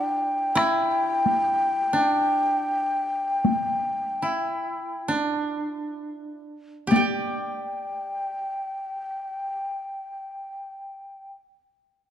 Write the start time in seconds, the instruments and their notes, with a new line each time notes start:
Already playing: koto D4 E4, shakuhachi G5
0.55 koto E4, taiko rim
1.26 taiko high
1.93 koto D4
3.45 taiko high
4.22 koto E4
5.08 koto D4
6.87 koto G4 D5, shakuhachi G5
6.92 taiko high
6.96 koto G5